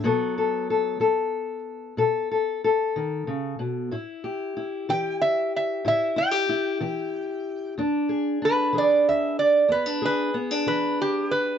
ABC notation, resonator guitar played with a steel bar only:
X:1
M:12/8
L:1/8
Q:3/8=62
K:A
V:1 name="Resonator guitar played with a steel bar"
z12 | z3 =g e e e g4- g | z2 B d e d B B z B =G B |]